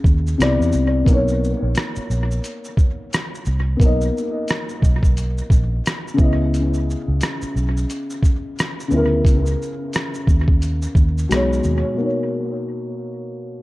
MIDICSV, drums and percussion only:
0, 0, Header, 1, 2, 480
1, 0, Start_track
1, 0, Key_signature, 5, "major"
1, 0, Tempo, 681818
1, 753, Time_signature, 4, 2, 24, 8
1, 9590, End_track
2, 0, Start_track
2, 0, Title_t, "Drums"
2, 30, Note_on_c, 9, 36, 93
2, 39, Note_on_c, 9, 82, 43
2, 100, Note_off_c, 9, 36, 0
2, 109, Note_off_c, 9, 82, 0
2, 188, Note_on_c, 9, 82, 43
2, 259, Note_off_c, 9, 82, 0
2, 284, Note_on_c, 9, 42, 71
2, 284, Note_on_c, 9, 82, 73
2, 294, Note_on_c, 9, 37, 106
2, 355, Note_off_c, 9, 42, 0
2, 355, Note_off_c, 9, 82, 0
2, 365, Note_off_c, 9, 37, 0
2, 435, Note_on_c, 9, 82, 46
2, 505, Note_off_c, 9, 82, 0
2, 508, Note_on_c, 9, 82, 50
2, 578, Note_off_c, 9, 82, 0
2, 749, Note_on_c, 9, 36, 101
2, 757, Note_on_c, 9, 42, 57
2, 757, Note_on_c, 9, 82, 63
2, 820, Note_off_c, 9, 36, 0
2, 828, Note_off_c, 9, 42, 0
2, 828, Note_off_c, 9, 82, 0
2, 901, Note_on_c, 9, 82, 51
2, 972, Note_off_c, 9, 82, 0
2, 1013, Note_on_c, 9, 82, 43
2, 1083, Note_off_c, 9, 82, 0
2, 1232, Note_on_c, 9, 42, 65
2, 1232, Note_on_c, 9, 82, 62
2, 1250, Note_on_c, 9, 37, 114
2, 1302, Note_off_c, 9, 42, 0
2, 1302, Note_off_c, 9, 82, 0
2, 1321, Note_off_c, 9, 37, 0
2, 1377, Note_on_c, 9, 82, 48
2, 1448, Note_off_c, 9, 82, 0
2, 1482, Note_on_c, 9, 82, 50
2, 1553, Note_off_c, 9, 82, 0
2, 1627, Note_on_c, 9, 82, 52
2, 1698, Note_off_c, 9, 82, 0
2, 1718, Note_on_c, 9, 42, 67
2, 1718, Note_on_c, 9, 82, 65
2, 1789, Note_off_c, 9, 42, 0
2, 1789, Note_off_c, 9, 82, 0
2, 1861, Note_on_c, 9, 82, 54
2, 1931, Note_off_c, 9, 82, 0
2, 1952, Note_on_c, 9, 36, 91
2, 1960, Note_on_c, 9, 82, 47
2, 2022, Note_off_c, 9, 36, 0
2, 2030, Note_off_c, 9, 82, 0
2, 2204, Note_on_c, 9, 42, 76
2, 2204, Note_on_c, 9, 82, 75
2, 2214, Note_on_c, 9, 37, 119
2, 2274, Note_off_c, 9, 42, 0
2, 2274, Note_off_c, 9, 82, 0
2, 2284, Note_off_c, 9, 37, 0
2, 2356, Note_on_c, 9, 82, 50
2, 2426, Note_off_c, 9, 82, 0
2, 2431, Note_on_c, 9, 82, 49
2, 2501, Note_off_c, 9, 82, 0
2, 2673, Note_on_c, 9, 36, 102
2, 2684, Note_on_c, 9, 42, 58
2, 2684, Note_on_c, 9, 82, 61
2, 2744, Note_off_c, 9, 36, 0
2, 2755, Note_off_c, 9, 42, 0
2, 2755, Note_off_c, 9, 82, 0
2, 2824, Note_on_c, 9, 82, 51
2, 2894, Note_off_c, 9, 82, 0
2, 2938, Note_on_c, 9, 82, 42
2, 3008, Note_off_c, 9, 82, 0
2, 3154, Note_on_c, 9, 42, 62
2, 3154, Note_on_c, 9, 82, 64
2, 3172, Note_on_c, 9, 37, 108
2, 3224, Note_off_c, 9, 42, 0
2, 3224, Note_off_c, 9, 82, 0
2, 3242, Note_off_c, 9, 37, 0
2, 3301, Note_on_c, 9, 82, 47
2, 3372, Note_off_c, 9, 82, 0
2, 3395, Note_on_c, 9, 36, 87
2, 3407, Note_on_c, 9, 82, 50
2, 3466, Note_off_c, 9, 36, 0
2, 3477, Note_off_c, 9, 82, 0
2, 3539, Note_on_c, 9, 36, 84
2, 3549, Note_on_c, 9, 82, 50
2, 3610, Note_off_c, 9, 36, 0
2, 3619, Note_off_c, 9, 82, 0
2, 3640, Note_on_c, 9, 42, 61
2, 3640, Note_on_c, 9, 82, 59
2, 3711, Note_off_c, 9, 42, 0
2, 3711, Note_off_c, 9, 82, 0
2, 3785, Note_on_c, 9, 82, 55
2, 3855, Note_off_c, 9, 82, 0
2, 3872, Note_on_c, 9, 36, 91
2, 3881, Note_on_c, 9, 82, 49
2, 3942, Note_off_c, 9, 36, 0
2, 3952, Note_off_c, 9, 82, 0
2, 4125, Note_on_c, 9, 42, 79
2, 4125, Note_on_c, 9, 82, 69
2, 4135, Note_on_c, 9, 37, 112
2, 4195, Note_off_c, 9, 42, 0
2, 4195, Note_off_c, 9, 82, 0
2, 4205, Note_off_c, 9, 37, 0
2, 4277, Note_on_c, 9, 82, 45
2, 4347, Note_off_c, 9, 82, 0
2, 4352, Note_on_c, 9, 82, 42
2, 4354, Note_on_c, 9, 36, 107
2, 4422, Note_off_c, 9, 82, 0
2, 4425, Note_off_c, 9, 36, 0
2, 4604, Note_on_c, 9, 42, 53
2, 4604, Note_on_c, 9, 82, 58
2, 4674, Note_off_c, 9, 42, 0
2, 4674, Note_off_c, 9, 82, 0
2, 4743, Note_on_c, 9, 82, 51
2, 4813, Note_off_c, 9, 82, 0
2, 4857, Note_on_c, 9, 82, 42
2, 4928, Note_off_c, 9, 82, 0
2, 5074, Note_on_c, 9, 42, 71
2, 5074, Note_on_c, 9, 82, 62
2, 5092, Note_on_c, 9, 37, 102
2, 5144, Note_off_c, 9, 42, 0
2, 5144, Note_off_c, 9, 82, 0
2, 5162, Note_off_c, 9, 37, 0
2, 5220, Note_on_c, 9, 82, 47
2, 5290, Note_off_c, 9, 82, 0
2, 5326, Note_on_c, 9, 82, 46
2, 5397, Note_off_c, 9, 82, 0
2, 5470, Note_on_c, 9, 82, 53
2, 5540, Note_off_c, 9, 82, 0
2, 5560, Note_on_c, 9, 42, 60
2, 5560, Note_on_c, 9, 82, 58
2, 5631, Note_off_c, 9, 42, 0
2, 5631, Note_off_c, 9, 82, 0
2, 5703, Note_on_c, 9, 82, 58
2, 5774, Note_off_c, 9, 82, 0
2, 5791, Note_on_c, 9, 36, 87
2, 5802, Note_on_c, 9, 82, 49
2, 5861, Note_off_c, 9, 36, 0
2, 5873, Note_off_c, 9, 82, 0
2, 6045, Note_on_c, 9, 42, 66
2, 6045, Note_on_c, 9, 82, 76
2, 6055, Note_on_c, 9, 37, 122
2, 6116, Note_off_c, 9, 42, 0
2, 6116, Note_off_c, 9, 82, 0
2, 6126, Note_off_c, 9, 37, 0
2, 6194, Note_on_c, 9, 82, 49
2, 6265, Note_off_c, 9, 82, 0
2, 6270, Note_on_c, 9, 82, 47
2, 6341, Note_off_c, 9, 82, 0
2, 6510, Note_on_c, 9, 36, 101
2, 6522, Note_on_c, 9, 42, 62
2, 6522, Note_on_c, 9, 82, 58
2, 6580, Note_off_c, 9, 36, 0
2, 6593, Note_off_c, 9, 42, 0
2, 6593, Note_off_c, 9, 82, 0
2, 6660, Note_on_c, 9, 82, 51
2, 6730, Note_off_c, 9, 82, 0
2, 6774, Note_on_c, 9, 82, 42
2, 6845, Note_off_c, 9, 82, 0
2, 6993, Note_on_c, 9, 42, 64
2, 6993, Note_on_c, 9, 82, 63
2, 7011, Note_on_c, 9, 37, 111
2, 7063, Note_off_c, 9, 42, 0
2, 7063, Note_off_c, 9, 82, 0
2, 7081, Note_off_c, 9, 37, 0
2, 7139, Note_on_c, 9, 82, 51
2, 7210, Note_off_c, 9, 82, 0
2, 7232, Note_on_c, 9, 36, 89
2, 7240, Note_on_c, 9, 82, 45
2, 7303, Note_off_c, 9, 36, 0
2, 7311, Note_off_c, 9, 82, 0
2, 7377, Note_on_c, 9, 36, 87
2, 7447, Note_off_c, 9, 36, 0
2, 7477, Note_on_c, 9, 42, 57
2, 7477, Note_on_c, 9, 82, 67
2, 7547, Note_off_c, 9, 42, 0
2, 7547, Note_off_c, 9, 82, 0
2, 7617, Note_on_c, 9, 82, 51
2, 7687, Note_off_c, 9, 82, 0
2, 7709, Note_on_c, 9, 36, 91
2, 7717, Note_on_c, 9, 82, 47
2, 7779, Note_off_c, 9, 36, 0
2, 7787, Note_off_c, 9, 82, 0
2, 7869, Note_on_c, 9, 82, 44
2, 7940, Note_off_c, 9, 82, 0
2, 7962, Note_on_c, 9, 42, 76
2, 7962, Note_on_c, 9, 82, 76
2, 7972, Note_on_c, 9, 37, 117
2, 8032, Note_off_c, 9, 42, 0
2, 8032, Note_off_c, 9, 82, 0
2, 8042, Note_off_c, 9, 37, 0
2, 8115, Note_on_c, 9, 82, 49
2, 8186, Note_off_c, 9, 82, 0
2, 8190, Note_on_c, 9, 82, 46
2, 8261, Note_off_c, 9, 82, 0
2, 9590, End_track
0, 0, End_of_file